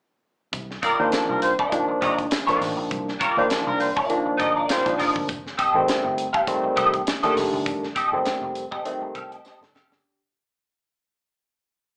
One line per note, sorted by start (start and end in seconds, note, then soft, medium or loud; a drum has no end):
0.53 0.77 C2 loud
0.53 kick loud
0.53 closed hi-hat medium
0.53 tambourine soft
0.71 snare soft
0.82 0.96 G3 medium
0.82 1.04 D#4 medium
0.82 0.96 F4 medium
0.82 1.05 F4 medium
0.82 0.96 A#4 loud
0.82 1.05 A#4 medium
0.82 1.05 D5 medium
0.82 kick medium
0.82 closed hi-hat medium
0.82 tambourine medium
0.99 1.10 D#2 medium
0.99 1.51 D#3 loud
0.99 1.51 F3 medium
0.99 1.08 G3 medium
0.99 1.51 A#3 medium
0.99 1.51 D4 loud
0.99 1.08 F4 medium
0.99 1.08 C5 medium
1.12 muted picked electric bass stroke soft
1.12 muted clean electric guitar stroke soft
1.12 snare loud
1.12 closed hi-hat medium
1.12 tambourine medium
1.29 1.54 C2 medium
1.29 1.39 G3 medium
1.29 1.39 F4 medium
1.29 1.39 A#4 medium
1.29 muted clean electric guitar stroke medium
1.42 1.52 G3 medium
1.42 1.53 F4 medium
1.42 1.53 C5 loud
1.42 closed hi-hat medium
1.42 tambourine medium
1.59 1.71 D#4 medium
1.59 1.71 F4 medium
1.59 1.72 A#4 medium
1.59 1.73 D#5 medium
1.59 kick medium
1.72 2.25 D#3 loud
1.72 2.25 F3 medium
1.72 2.26 A#3 medium
1.72 2.26 D4 loud
1.72 muted clean electric guitar stroke soft
1.72 kick medium
1.72 closed hi-hat medium
1.72 tambourine soft
1.88 muted clean electric guitar stroke soft
1.88 muted picked electric bass stroke soft
2.01 2.26 G1 medium
2.01 2.12 A#3 medium
2.01 2.23 D#4 medium
2.01 2.18 F4 medium
2.01 2.12 G4 medium
2.01 2.17 A#4 medium
2.01 2.17 D5 medium
2.01 2.12 D#5 medium
2.01 kick medium
2.01 closed hi-hat medium
2.01 tambourine soft
2.18 muted clean electric guitar stroke soft
2.18 kick medium
2.18 closed hi-hat soft
2.30 muted clean electric guitar stroke soft
2.30 snare loud
2.30 closed hi-hat loud
2.30 tambourine medium
2.47 2.59 A#1 medium
2.47 2.54 D3 medium
2.47 3.11 F3 medium
2.47 3.11 A#3 medium
2.47 3.11 D4 loud
2.47 2.58 D#4 medium
2.47 2.59 F4 medium
2.47 2.59 A#4 medium
2.47 2.60 D5 medium
2.47 snare soft
2.47 closed hi-hat soft
2.55 3.14 D#3 medium
2.60 2.75 A1 medium
2.60 muted clean electric guitar stroke soft
2.60 snare soft
2.60 open hi-hat medium
2.60 tambourine medium
2.77 2.89 A#1 medium
2.77 muted clean electric guitar stroke medium
2.91 3.15 C2 loud
2.91 kick loud
2.91 closed hi-hat medium
2.91 tambourine soft
3.08 snare soft
3.19 3.34 G3 medium
3.19 3.42 D#4 medium
3.19 3.42 F4 medium
3.19 3.34 F4 medium
3.19 3.34 A#4 medium
3.19 3.43 A#4 medium
3.19 3.43 D5 medium
3.19 kick loud
3.19 closed hi-hat medium
3.19 tambourine soft
3.37 3.48 D#2 medium
3.37 3.89 D#3 medium
3.37 3.89 F3 medium
3.37 3.45 G3 medium
3.37 3.89 A#3 medium
3.37 3.89 D4 loud
3.37 3.45 F4 medium
3.37 3.45 C5 medium
3.49 muted clean electric guitar stroke soft
3.49 muted picked electric bass stroke soft
3.49 snare loud
3.49 closed hi-hat medium
3.49 tambourine medium
3.67 3.91 C2 medium
3.67 3.77 G3 medium
3.67 3.78 F4 medium
3.67 3.78 A#4 medium
3.67 muted clean electric guitar stroke medium
3.80 3.90 G3 medium
3.80 3.90 F4 medium
3.80 3.90 C5 medium
3.80 open hi-hat soft
3.80 tambourine medium
3.96 4.08 D#4 medium
3.96 4.08 F4 medium
3.96 4.09 A#4 medium
3.96 4.09 D5 medium
3.96 kick medium
4.09 4.63 D#3 loud
4.09 4.63 F3 medium
4.09 4.63 A#3 medium
4.09 4.63 D4 loud
4.09 muted clean electric guitar stroke soft
4.09 closed hi-hat medium
4.09 tambourine soft
4.26 muted clean electric guitar stroke soft
4.26 muted picked electric bass stroke soft
4.37 4.64 G1 medium
4.37 4.50 A#3 medium
4.37 4.56 D#4 medium
4.37 4.55 F4 medium
4.37 4.50 G4 medium
4.37 4.54 A#4 medium
4.37 4.55 D#5 medium
4.37 4.50 D#5 medium
4.37 kick medium
4.37 closed hi-hat medium
4.37 tambourine soft
4.55 4.66 D#4 soft
4.55 4.67 F4 medium
4.55 4.68 A#4 medium
4.55 4.68 D5 medium
4.68 4.93 G3 medium
4.68 4.90 D#4 medium
4.68 4.85 F4 medium
4.68 4.93 F4 loud
4.68 4.84 A#4 medium
4.68 4.93 C5 loud
4.68 4.84 D5 medium
4.68 snare loud
4.68 closed hi-hat loud
4.68 tambourine medium
4.85 4.97 A#1 medium
4.85 5.29 D#3 medium
4.85 5.29 F3 medium
4.85 5.29 A#3 medium
4.85 5.29 D4 loud
4.85 muted clean electric guitar stroke soft
4.85 kick medium
4.85 snare soft
4.85 closed hi-hat soft
4.98 5.12 F1 loud
4.98 5.16 D#4 medium
4.98 5.15 F4 medium
4.98 5.14 A#4 medium
4.98 5.14 D#5 medium
4.98 snare soft
4.98 open hi-hat medium
4.98 tambourine medium
5.15 5.29 G1 medium
5.15 muted clean electric guitar stroke soft
5.15 kick medium
5.28 5.53 F1 loud
5.28 kick loud
5.28 closed hi-hat medium
5.28 tambourine medium
5.47 snare soft
5.58 5.80 C4 medium
5.58 5.80 G4 medium
5.58 5.80 A4 medium
5.58 5.81 D#5 medium
5.58 kick loud
5.58 closed hi-hat medium
5.58 tambourine soft
5.74 5.85 A1 medium
5.74 6.27 D#3 medium
5.74 6.27 G3 medium
5.74 6.27 A3 medium
5.74 6.27 C4 loud
5.88 muted picked electric bass stroke soft
5.88 muted clean electric guitar stroke soft
5.88 snare loud
5.88 closed hi-hat loud
5.88 tambourine medium
6.04 6.29 G1 medium
6.04 muted clean electric guitar stroke soft
6.18 closed hi-hat medium
6.18 tambourine soft
6.33 6.45 C4 medium
6.33 6.46 G4 medium
6.33 6.46 A4 medium
6.33 6.47 F5 medium
6.33 kick loud
6.47 7.01 D#3 loud
6.47 7.01 G3 medium
6.47 7.01 A3 loud
6.47 7.01 C4 loud
6.47 muted clean electric guitar stroke soft
6.47 kick medium
6.47 closed hi-hat medium
6.47 tambourine soft
6.63 muted clean electric guitar stroke soft
6.63 muted picked electric bass stroke soft
6.76 7.01 C2 medium
6.76 6.98 C4 medium
6.76 6.93 G4 medium
6.76 6.92 A4 medium
6.76 6.92 D#5 loud
6.76 kick medium
6.76 closed hi-hat medium
6.76 tambourine soft
6.93 muted clean electric guitar stroke soft
6.93 kick medium
6.93 closed hi-hat soft
7.06 muted clean electric guitar stroke soft
7.06 snare loud
7.06 closed hi-hat medium
7.06 tambourine medium
7.23 7.35 D#2 medium
7.23 7.86 D#3 loud
7.23 7.86 G3 medium
7.23 7.86 A3 medium
7.23 7.35 C4 medium
7.23 7.86 D4 loud
7.23 7.35 G4 medium
7.23 7.35 A4 medium
7.23 7.36 D#5 medium
7.23 snare soft
7.23 closed hi-hat soft
7.36 7.50 F1 loud
7.36 snare soft
7.36 open hi-hat medium
7.36 tambourine medium
7.53 7.66 G1 medium
7.53 muted clean electric guitar stroke soft
7.66 7.91 F1 loud
7.66 kick loud
7.66 closed hi-hat medium
7.66 tambourine soft
7.83 snare soft
7.95 8.17 C4 medium
7.95 8.18 G4 medium
7.95 8.18 A4 medium
7.95 8.18 D#5 medium
7.95 kick medium
7.95 closed hi-hat medium
7.95 tambourine soft
8.12 8.23 G1 medium
8.12 8.64 D#3 medium
8.12 8.64 G3 medium
8.12 8.64 A3 medium
8.12 8.65 C4 loud
8.25 muted picked electric bass stroke soft
8.25 muted clean electric guitar stroke soft
8.25 snare loud
8.25 closed hi-hat medium
8.25 tambourine medium
8.42 8.66 F1 medium
8.42 muted clean electric guitar stroke medium
8.55 closed hi-hat medium
8.55 tambourine soft
8.71 8.84 C4 medium
8.71 8.84 G4 medium
8.71 8.84 A4 medium
8.71 8.84 D#5 medium
8.71 kick medium
8.85 9.38 D#3 loud
8.85 9.38 G3 medium
8.85 9.39 A3 medium
8.85 9.39 C4 loud
8.85 muted clean electric guitar stroke soft
8.85 closed hi-hat medium
9.01 muted clean electric guitar stroke soft
9.01 muted picked electric bass stroke soft
9.15 9.39 C2 medium
9.15 9.31 C4 medium
9.15 9.31 G4 medium
9.15 9.31 A4 medium
9.15 9.31 F5 medium
9.15 kick medium
9.15 closed hi-hat medium
9.15 tambourine soft
9.31 9.44 C4 medium
9.31 9.44 G4 medium
9.31 9.44 A4 medium
9.31 9.45 D#5 medium
9.31 closed hi-hat medium
9.45 9.67 C4 medium
9.45 9.62 G4 medium
9.45 9.61 G4 medium
9.45 9.61 A4 medium
9.45 9.61 C5 medium
9.45 9.60 D#5 loud
9.45 snare medium
9.45 tambourine medium
9.61 9.72 G1 loud
9.61 9.90 D#4 medium
9.61 9.90 A4 medium
9.61 muted clean electric guitar stroke soft
9.61 snare medium
9.74 9.88 F1 loud
9.74 9.92 C4 medium
9.74 9.91 G4 medium
9.74 9.91 A4 medium
9.74 9.91 F5 medium
9.74 snare medium
9.74 tambourine medium
9.90 10.01 G1 medium
9.90 10.20 D4 medium
9.90 10.19 G4 medium
9.90 muted clean electric guitar stroke medium
9.90 snare medium